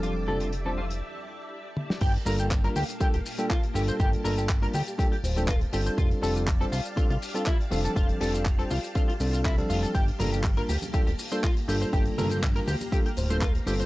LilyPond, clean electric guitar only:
\new Staff \with { instrumentName = "Clean electric guitar" } { \time 4/4 \key g \dorian \tempo 4 = 121 f'16 r16 a'16 f'16 r16 a'16 f'16 r2 r16 | g'16 r16 bes'16 g'16 r16 bes'16 g'16 r16 g'16 g'16 r16 g'16 f'16 r16 g'16 c''16 | g'16 r16 bes'16 g'16 r16 bes'16 g'16 r16 g'16 g'16 r16 g'16 f'16 r16 g'16 c''16 | f'16 r16 a'16 f'16 r16 a'16 f'16 r16 f'16 f'16 r16 f'16 e'16 r16 f'16 a'16 |
f'16 r16 a'16 f'16 r16 a'16 f'16 r16 f'16 f'16 r16 f'16 e'16 r16 f'16 a'16 | g'16 r16 bes'16 g'16 r16 bes'16 g'16 r16 g'16 g'16 r16 c''16 f'16 r16 g'16 c''16 | g'16 r16 bes'16 g'16 r16 bes'16 g'16 r16 g'16 g'16 r16 c''16 f'16 r16 g'16 c''16 | }